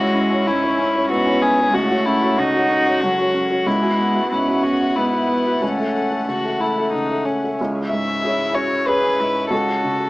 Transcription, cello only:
0.00 0.48 G#3 medium
0.47 1.11 C#4 medium
1.10 1.73 B3 medium
1.74 2.41 A3 medium
2.39 3.04 D#4 medium
3.03 3.67 F#3 medium
3.66 4.33 G#3 medium
4.32 4.98 C#4 medium
4.97 5.61 B3 medium
5.62 6.91 A3 medium
8.23 8.57 E4 soft
8.55 8.89 F#4 soft
8.88 9.21 G#4 medium
9.20 9.53 E4 soft
9.52 10.10 F#4 medium

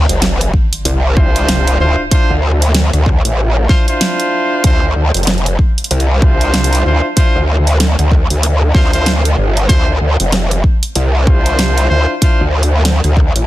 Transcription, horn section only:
1.17 1.77 D4 medium
1.17 1.77 E4 medium
1.17 1.77 F4 medium
1.17 1.77 C5 medium
1.80 2.02 D4 medium
1.80 2.02 E4 medium
1.80 2.02 F4 medium
1.80 2.02 C5 medium
2.11 2.34 D4 loud
2.11 2.34 E4 medium
2.11 2.34 F4 medium
2.11 2.34 C5 loud
3.69 3.84 D4 medium
3.69 3.84 E4 medium
3.69 3.84 F4 medium
3.69 3.84 C5 loud
3.88 4.61 D4 medium
3.88 4.61 E4 medium
3.88 4.61 F4 medium
3.88 4.61 C5 medium
4.64 4.86 D4 loud
4.64 4.86 E4 medium
4.64 4.86 F4 medium
4.64 4.86 C5 loud
6.22 6.82 D4 medium
6.22 6.82 E4 medium
6.22 6.82 F4 medium
6.22 6.82 C5 medium
6.85 7.08 D4 medium
6.85 7.07 E4 medium
6.85 7.08 F4 medium
6.85 7.08 C5 medium
7.17 7.39 D4 loud
7.17 7.39 E4 medium
7.17 7.39 F4 medium
7.17 7.39 C5 loud
8.75 8.90 D4 medium
8.75 8.90 E4 medium
8.75 8.90 F4 medium
8.75 8.90 C5 medium
8.94 9.11 D4 medium
8.94 9.11 E4 medium
8.94 9.11 F4 medium
8.94 9.11 C5 loud
9.69 9.92 D4 loud
9.69 9.92 E4 medium
9.69 9.92 F4 medium
9.69 9.92 C5 loud
11.27 11.87 D4 medium
11.27 11.87 E4 medium
11.27 11.87 F4 medium
11.27 11.87 C5 medium
11.90 12.12 D4 medium
11.90 12.12 E4 medium
11.90 12.12 F4 medium
11.90 12.13 C5 medium
12.22 12.44 D4 medium
12.22 12.44 E4 medium
12.22 12.44 F4 medium
12.22 12.44 C5 loud

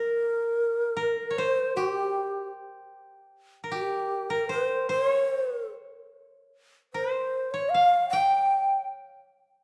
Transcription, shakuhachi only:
0.00 1.38 A#4 medium
1.37 1.75 C5 medium
1.76 1.89 F#4 medium
1.89 2.50 G4 medium
3.71 3.82 F#4 medium
3.82 4.31 G4 medium
4.30 4.49 A#4 medium
4.50 4.87 C5 medium
4.90 5.68 C#5 medium
6.94 7.52 C5 medium
7.51 7.71 C#5 medium
7.69 8.09 F5 medium
8.09 8.84 G5 medium

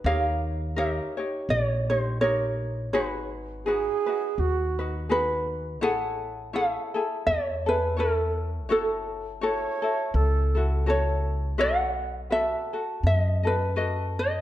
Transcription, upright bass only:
0.04 0.98 D#2 medium
1.49 2.93 A#1 medium
2.93 3.87 G#1 loud
4.38 5.82 D#2 medium
5.82 6.76 A1 medium
7.27 8.71 E2 medium
8.71 9.65 F#1 medium
10.14 11.59 C#2 medium
11.59 12.53 B1 loud
13.03 14.41 F#2 medium

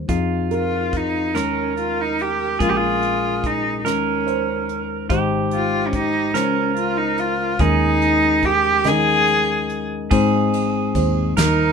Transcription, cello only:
0.54 0.98 F4 medium
0.97 1.39 D#4 medium
1.37 1.78 C#4 medium
1.80 2.02 F4 medium
2.01 2.22 D#4 medium
2.21 2.61 G4 medium
2.62 2.71 F4 medium
2.70 2.77 G4 medium
2.76 3.48 F4 medium
3.46 3.79 D#4 medium
3.79 3.89 D#4 soft
3.87 4.80 C#4 medium
5.54 5.90 F4 medium
5.88 5.96 C#4 medium
5.95 6.38 D#4 medium
6.36 6.77 C#4 medium
6.77 6.99 F4 medium
6.97 7.20 D#4 medium
7.19 7.62 F4 medium
7.61 8.47 D#4 loud
8.45 8.90 G4 loud
8.88 9.81 G#4 medium
11.40 11.72 D#4 loud

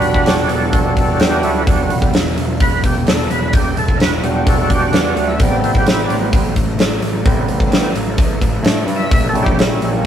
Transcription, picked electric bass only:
0.02 0.25 E1 medium
0.26 0.48 E1 medium
0.49 0.72 E1 medium
0.72 0.95 E1 medium
0.97 1.19 E1 medium
1.20 1.43 E2 medium
1.44 1.66 D2 medium
1.67 1.89 E1 medium
1.90 2.12 E1 medium
2.13 2.36 E1 medium
2.37 2.59 E1 medium
2.60 2.83 E1 medium
2.83 3.06 E1 medium
3.07 3.29 E1 medium
3.29 3.52 E1 medium
3.53 3.75 E1 medium
3.76 3.97 E1 medium
3.98 4.21 E1 medium
4.22 4.45 E1 medium
4.46 4.69 E1 medium
4.69 4.92 E1 medium
4.92 5.15 E2 medium
5.15 5.38 D2 medium
5.40 5.62 A1 medium
5.63 5.85 A1 medium
5.86 6.09 A1 medium
6.09 6.32 A1 medium
6.33 6.55 A1 medium
6.56 6.78 A1 medium
6.78 7.01 A1 medium
7.01 7.24 A1 medium
7.25 7.47 A1 medium
7.47 7.70 A1 medium
7.71 7.94 A1 medium
7.94 8.17 A1 medium
8.18 8.40 A1 medium
8.41 8.62 A1 medium
8.63 8.85 A2 medium
8.86 9.10 G2 medium
9.11 9.32 A#1 medium
9.33 9.55 A#1 medium
9.56 9.80 A#1 loud
9.81 10.04 A#1 medium

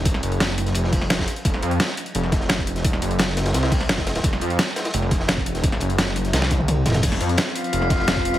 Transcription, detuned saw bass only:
0.00 0.22 F1 loud
0.23 0.74 F#1 loud
0.75 1.26 F1 loud
1.45 1.61 F1 loud
1.63 1.79 F2 loud
2.15 2.76 F1 medium
2.76 3.01 E1 medium
3.02 3.53 F#1 loud
3.54 3.88 C2 loud
3.89 4.23 F#1 loud
4.24 4.40 F1 loud
4.42 4.58 F2 loud
4.94 5.80 F1 loud
5.81 6.32 F#1 loud
6.33 6.84 C2 loud
6.86 7.02 F1 loud
7.03 7.19 F1 loud
7.21 7.37 F2 loud
7.73 8.39 F1 loud

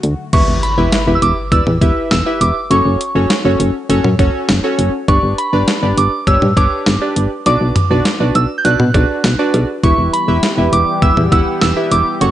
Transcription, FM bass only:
0.04 0.14 D2 loud
0.33 0.44 E1 loud
0.48 0.59 E1 medium
0.78 0.89 E1 loud
1.07 1.18 E1 loud
1.22 1.33 E1 loud
1.52 1.63 E1 loud
1.67 1.78 E2 loud
1.82 1.92 E1 loud
2.11 2.22 E1 loud
2.41 2.52 E1 loud
2.71 2.81 F#1 loud
2.85 2.96 F#1 loud
3.15 3.26 F#1 loud
3.45 3.56 F#1 loud
3.60 3.71 F#1 loud
3.89 4.00 F#1 loud
4.04 4.15 F#2 loud
4.19 4.30 F#1 loud
4.49 4.60 F#1 loud
4.79 4.89 F#1 loud
5.08 5.19 G1 loud
5.23 5.34 G1 medium
5.53 5.64 G1 loud
5.83 5.94 G1 loud
5.97 6.08 G1 loud
6.27 6.38 G1 loud
6.42 6.53 G2 loud
6.57 6.68 G1 loud
6.87 6.97 G1 loud
7.16 7.27 G1 loud
7.46 7.57 B1 loud
7.61 7.72 B1 medium
7.91 8.01 B1 loud
8.20 8.31 B1 loud
8.35 8.46 B1 loud
8.65 8.76 B1 loud
8.80 8.91 B2 medium
8.94 9.05 B1 loud
9.24 9.35 B1 loud
9.54 9.65 B1 loud
9.84 9.94 E1 loud
9.98 10.09 E1 medium
10.28 10.39 E1 loud
10.58 10.69 E1 loud
10.73 10.83 E1 loud
11.02 11.13 E1 loud
11.17 11.28 E2 loud
11.32 11.43 E1 loud
11.62 11.73 E1 loud
11.92 12.02 E1 loud
12.21 12.31 F#1 loud

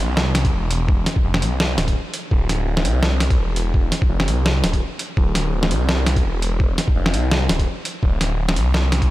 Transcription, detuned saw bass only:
0.00 0.52 C2 medium
0.53 1.05 E1 medium
1.24 1.44 F1 medium
1.42 1.77 C2 medium
1.78 1.94 D1 medium
2.31 2.86 D1 loud
2.85 3.37 C2 medium
3.38 3.91 E1 medium
4.10 4.29 F1 medium
4.27 4.62 C2 medium
4.63 4.80 D1 medium
5.17 5.72 D1 loud
5.71 6.23 C2 loud
6.24 6.77 E1 medium
6.96 7.15 F1 medium
7.14 7.48 C2 loud
7.49 7.66 D1 medium
8.03 8.58 D1 loud
8.56 9.09 C2 medium

